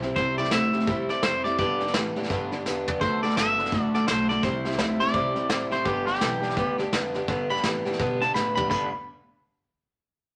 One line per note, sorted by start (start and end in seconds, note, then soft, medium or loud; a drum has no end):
0.00 0.16 B1 loud
0.00 0.15 C3 medium
0.00 0.15 G3 medium
0.00 0.16 E4 medium
0.00 0.16 G4 medium
0.00 snare soft
0.04 0.15 C4 medium
0.16 0.51 C2 medium
0.16 0.38 C3 medium
0.16 0.36 C3 medium
0.16 0.38 G3 medium
0.16 0.36 G3 loud
0.16 0.38 C4 medium
0.16 0.38 E4 medium
0.16 0.36 G4 medium
0.16 0.37 C5 loud
0.16 kick loud
0.16 snare soft
0.38 0.51 C3 medium
0.38 0.51 G3 medium
0.38 0.51 C4 soft
0.38 0.51 E4 medium
0.38 0.52 G4 medium
0.38 0.52 D5 loud
0.38 snare soft
0.45 snare soft
0.51 0.73 D2 loud
0.51 0.72 C3 loud
0.51 0.73 G3 medium
0.51 0.72 A3 loud
0.51 0.74 C4 medium
0.51 0.74 E4 medium
0.51 0.72 G4 medium
0.51 1.08 E5 loud
0.51 snare loud
0.51 hi-hat pedal medium
0.73 0.86 C3 medium
0.73 0.86 A3 medium
0.73 0.86 C4 soft
0.73 0.87 E4 medium
0.73 0.87 G4 medium
0.73 muted upright bass stroke soft
0.73 snare soft
0.80 snare soft
0.87 1.08 E2 medium
0.87 1.09 C3 medium
0.87 1.07 C3 medium
0.87 1.09 G3 loud
0.87 1.07 G3 loud
0.87 1.09 C4 medium
0.87 1.09 E4 medium
0.87 1.08 G4 medium
0.87 kick loud
0.87 snare soft
1.09 1.22 C3 medium
1.09 1.22 G3 medium
1.09 1.22 C4 soft
1.09 1.23 E4 soft
1.09 1.23 G4 medium
1.09 1.23 D5 medium
1.09 muted upright bass stroke soft
1.09 snare soft
1.22 1.58 F2 loud
1.22 1.43 C3 medium
1.22 1.44 G3 medium
1.22 1.43 G3 medium
1.22 1.45 C4 medium
1.22 1.44 E4 medium
1.22 1.43 G4 medium
1.22 1.44 C5 loud
1.22 snare loud
1.22 hi-hat pedal medium
1.44 1.58 C3 medium
1.44 1.58 G3 medium
1.44 1.59 C4 soft
1.44 1.59 E4 soft
1.44 1.59 G4 medium
1.44 1.58 D5 loud
1.44 snare soft
1.58 1.80 G2 medium
1.58 1.93 G2 medium
1.58 1.79 G2 medium
1.58 1.81 D3 medium
1.58 1.79 D3 loud
1.58 1.81 G3 medium
1.58 1.81 B3 medium
1.58 1.80 D4 medium
1.58 1.79 G4 medium
1.58 1.93 D5 loud
1.58 kick loud
1.58 snare soft
1.80 1.93 G2 medium
1.80 1.93 D3 medium
1.80 1.93 G3 soft
1.80 1.94 B3 medium
1.80 1.95 D4 medium
1.80 1.94 G4 medium
1.80 snare soft
1.87 snare soft
1.94 2.14 G2 medium
1.94 2.29 A2 loud
1.94 2.14 E3 loud
1.94 2.16 G3 medium
1.94 2.16 B3 medium
1.94 2.16 D4 medium
1.94 2.15 G4 medium
1.94 snare loud
1.94 hi-hat pedal medium
2.16 2.28 G2 medium
2.16 2.29 E3 medium
2.16 2.29 G3 medium
2.16 2.30 B3 medium
2.16 2.30 D4 medium
2.16 2.30 G4 medium
2.16 snare soft
2.23 snare soft
2.30 2.49 G2 medium
2.30 2.52 G2 loud
2.30 2.64 G2 medium
2.30 2.52 D3 medium
2.30 2.50 D3 medium
2.30 2.52 G3 medium
2.30 2.52 B3 loud
2.30 2.51 D4 loud
2.30 2.50 G4 medium
2.30 kick loud
2.30 snare soft
2.51 2.64 G2 medium
2.51 2.64 D3 medium
2.51 2.64 G3 soft
2.51 2.65 B3 medium
2.51 2.66 D4 medium
2.51 2.65 G4 medium
2.51 snare soft
2.65 3.00 E2 medium
2.65 2.85 G2 medium
2.65 2.85 D3 loud
2.65 2.87 G3 medium
2.65 2.88 B3 medium
2.65 2.87 D4 medium
2.65 2.86 G4 medium
2.65 snare medium
2.65 hi-hat pedal loud
2.87 3.00 G2 medium
2.87 3.00 D3 medium
2.87 3.01 G3 soft
2.87 3.02 B3 medium
2.87 3.01 D4 medium
2.87 3.01 G4 medium
2.87 floor tom medium
3.01 3.36 D2 medium
3.01 3.23 D3 medium
3.01 3.21 D3 medium
3.01 3.23 A3 medium
3.01 3.21 A3 medium
3.01 3.23 D4 medium
3.01 3.23 F#4 medium
3.01 3.22 A4 medium
3.01 3.22 C5 loud
3.01 kick loud
3.01 snare soft
3.23 3.35 D3 medium
3.23 3.36 A3 medium
3.23 3.36 D4 soft
3.23 3.37 F#4 soft
3.23 3.37 A4 medium
3.23 3.36 D5 loud
3.23 snare soft
3.30 snare soft
3.36 3.71 G1 loud
3.36 3.56 D3 medium
3.36 3.58 A3 medium
3.36 3.57 B3 loud
3.36 3.59 D4 medium
3.36 3.58 F#4 medium
3.36 3.57 A4 medium
3.36 3.82 E5 loud
3.36 snare loud
3.36 hi-hat pedal medium
3.58 3.71 D3 medium
3.58 3.71 B3 medium
3.58 3.72 D4 medium
3.58 3.73 F#4 medium
3.58 3.72 A4 medium
3.58 snare soft
3.66 snare soft
3.72 4.07 A1 medium
3.72 3.92 D3 medium
3.72 3.94 D3 medium
3.72 3.92 A3 loud
3.72 3.94 A3 medium
3.72 3.94 D4 medium
3.72 3.94 F#4 medium
3.72 3.93 A4 medium
3.72 kick loud
3.72 snare soft
3.82 3.93 D5 loud
3.94 4.06 D3 medium
3.94 4.07 A3 medium
3.94 4.08 D4 soft
3.94 4.09 F#4 soft
3.94 4.08 A4 medium
3.94 4.07 D5 medium
3.94 snare soft
4.07 4.42 B1 medium
4.07 4.27 D3 medium
4.07 4.27 A3 loud
4.07 4.30 A3 medium
4.07 4.30 D4 medium
4.07 4.29 F#4 medium
4.07 4.28 A4 medium
4.07 4.29 C5 medium
4.07 snare loud
4.07 hi-hat pedal loud
4.29 4.42 D3 medium
4.29 4.42 A3 medium
4.29 4.43 D4 soft
4.29 4.44 F#4 medium
4.29 4.43 A4 medium
4.29 4.43 D5 medium
4.29 snare soft
4.43 4.78 C2 medium
4.43 4.63 C3 medium
4.43 4.65 C3 medium
4.43 4.65 G3 medium
4.43 4.63 G3 loud
4.43 4.65 C4 medium
4.43 4.65 E4 medium
4.43 4.64 G4 loud
4.43 4.78 C5 loud
4.43 kick loud
4.43 snare soft
4.65 4.77 C3 medium
4.65 4.78 G3 medium
4.65 4.77 C4 soft
4.65 4.78 E4 medium
4.65 4.79 G4 medium
4.65 snare soft
4.72 snare soft
4.78 5.13 D2 loud
4.78 4.98 C3 medium
4.78 5.00 G3 medium
4.78 4.98 A3 loud
4.78 5.00 C4 medium
4.78 4.99 E4 medium
4.78 4.98 G4 medium
4.78 snare loud
4.78 hi-hat pedal medium
5.00 5.12 C3 medium
5.00 5.13 A3 medium
5.00 5.13 C4 medium
5.00 5.14 E4 medium
5.00 5.14 G4 medium
5.00 5.69 D5 loud
5.00 snare soft
5.07 snare soft
5.13 5.34 C2 medium
5.13 5.34 C3 medium
5.13 5.36 C3 medium
5.13 5.34 G3 medium
5.13 5.36 G3 medium
5.13 5.36 C4 medium
5.13 5.36 E4 medium
5.13 5.35 G4 medium
5.13 kick loud
5.13 snare soft
5.35 5.48 C3 medium
5.35 5.48 G3 medium
5.35 5.49 C4 soft
5.35 5.49 E4 medium
5.35 5.50 G4 medium
5.35 snare soft
5.49 5.85 A1 loud
5.49 5.69 C3 medium
5.49 5.71 G3 medium
5.49 5.70 G3 loud
5.49 5.71 C4 medium
5.49 5.71 E4 medium
5.49 5.69 G4 medium
5.49 snare loud
5.49 hi-hat pedal loud
5.70 5.84 C3 medium
5.70 5.84 G3 medium
5.70 5.86 C4 soft
5.70 5.85 E4 medium
5.70 5.85 G4 medium
5.70 5.86 C5 medium
5.70 snare soft
5.85 6.20 G1 medium
5.85 6.07 G2 medium
5.85 6.05 G2 loud
5.85 6.07 D3 medium
5.85 6.05 D3 medium
5.85 6.07 G3 medium
5.85 6.07 B3 medium
5.85 6.06 D4 medium
5.85 6.06 G4 medium
5.85 6.05 G4 medium
5.85 kick loud
5.85 snare soft
6.06 6.20 G2 medium
6.06 6.20 D3 medium
6.06 6.18 G3 soft
6.06 6.19 B3 medium
6.06 6.20 D4 medium
6.06 6.20 G4 medium
6.06 6.76 G4 loud
6.06 snare soft
6.15 snare soft
6.19 6.56 B1 loud
6.19 6.41 G2 loud
6.19 6.41 E3 loud
6.19 6.42 G3 medium
6.19 6.42 B3 medium
6.19 6.42 D4 medium
6.19 6.40 G4 medium
6.19 snare loud
6.19 hi-hat pedal medium
6.41 6.55 G2 medium
6.41 6.56 E3 medium
6.41 6.56 G3 soft
6.41 6.56 B3 medium
6.41 6.56 D4 medium
6.41 6.56 G4 medium
6.41 snare soft
6.50 snare soft
6.57 6.91 D2 medium
6.57 6.79 G2 loud
6.57 6.77 G2 medium
6.57 6.79 D3 medium
6.57 6.77 D3 loud
6.57 6.79 G3 medium
6.57 6.79 B3 medium
6.57 6.78 D4 loud
6.57 6.77 G4 loud
6.57 kick loud
6.57 snare soft
6.78 6.91 G2 medium
6.78 6.91 D3 medium
6.78 6.92 G3 soft
6.78 6.92 B3 medium
6.78 6.93 D4 medium
6.78 6.92 G4 medium
6.78 snare soft
6.93 7.27 F2 loud
6.93 7.12 G2 medium
6.93 7.13 D3 loud
6.93 7.14 G3 medium
6.93 7.15 B3 medium
6.93 7.15 D4 medium
6.93 7.14 G4 medium
6.93 snare loud
6.93 hi-hat pedal medium
7.14 7.27 G2 medium
7.14 7.27 D3 medium
7.14 7.28 G3 soft
7.14 7.28 B3 medium
7.14 7.28 D4 medium
7.14 7.29 G4 medium
7.14 snare soft
7.28 7.50 G2 medium
7.28 7.63 G2 medium
7.28 7.48 G2 medium
7.28 7.50 D3 loud
7.28 7.48 D3 medium
7.28 7.50 G3 loud
7.28 7.50 B3 medium
7.28 7.50 D4 loud
7.28 7.49 G4 loud
7.28 kick loud
7.28 snare soft
7.50 7.62 G2 medium
7.50 7.63 D3 medium
7.50 7.63 G3 medium
7.50 7.64 B3 soft
7.50 7.64 D4 medium
7.50 7.64 G4 medium
7.50 7.64 B5 loud
7.50 snare soft
7.57 snare soft
7.63 7.83 G2 medium
7.63 7.99 A2 loud
7.63 7.83 E3 loud
7.63 7.86 G3 medium
7.63 7.85 B3 medium
7.63 7.85 D4 medium
7.63 7.84 G4 medium
7.63 snare loud
7.63 hi-hat pedal medium
7.85 7.98 G2 medium
7.85 7.98 E3 medium
7.85 7.98 G3 medium
7.85 7.99 B3 medium
7.85 7.99 D4 medium
7.85 7.99 G4 medium
7.85 snare soft
7.93 snare soft
7.99 8.21 G2 medium
7.99 8.19 G2 medium
7.99 8.34 B2 medium
7.99 8.21 D3 loud
7.99 8.19 D3 medium
7.99 8.21 G3 loud
7.99 8.22 B3 loud
7.99 8.21 D4 loud
7.99 8.20 G4 loud
7.99 kick loud
7.99 snare soft
8.21 8.33 G2 medium
8.21 8.34 D3 medium
8.21 8.34 G3 soft
8.21 8.35 B3 soft
8.21 8.35 D4 soft
8.21 8.35 G4 medium
8.21 8.34 A5 loud
8.21 snare soft
8.34 8.55 G2 loud
8.34 8.69 A2 loud
8.34 8.55 D3 medium
8.34 8.57 G3 medium
8.34 8.57 B3 medium
8.34 8.56 D4 medium
8.34 8.56 G4 medium
8.34 8.54 B5 medium
8.34 snare medium
8.34 hi-hat pedal medium
8.55 8.68 G2 medium
8.55 8.69 D3 medium
8.55 8.69 G3 soft
8.55 8.70 B3 soft
8.55 8.70 D4 medium
8.55 8.71 G4 medium
8.55 8.69 B5 loud
8.55 floor tom loud
8.69 8.91 G1 medium
8.69 8.87 G2 loud
8.69 8.88 G2 medium
8.69 8.88 D3 loud
8.69 8.88 D3 medium
8.69 8.88 G3 loud
8.69 8.88 G3 medium
8.69 8.88 B3 loud
8.69 8.88 B3 medium
8.69 8.88 D4 loud
8.69 8.89 D4 medium
8.69 8.89 G4 medium
8.69 8.91 B5 medium
8.69 kick loud
8.69 crash loud